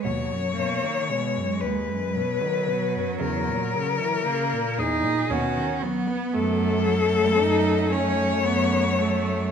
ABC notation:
X:1
M:3/4
L:1/16
Q:1/4=57
K:B
V:1 name="Cello"
c6 B6 | A6 G2 F2 z2 | [K:F#dor] A6 c6 |]
V:2 name="Cello"
F,2 A,2 G,4 F,4- | F,4 A,2 D2 C2 B,2 | [K:F#dor] A,2 F,2 D2 C2 B,2 A,2 |]
V:3 name="Cello" clef=bass
D,, F,, B,, D, B,, F,, D,, F,, B,, D, B,, F,, | E,, A,, C, E, C, A,, E,, A,, B,, D, F, B, | [K:F#dor] z2 A,4 A,4 A,2 |]
V:4 name="Cello" clef=bass
B,,4 z8 | C,4 z4 D,,4 | [K:F#dor] F,,4 F,,4 F,,4 |]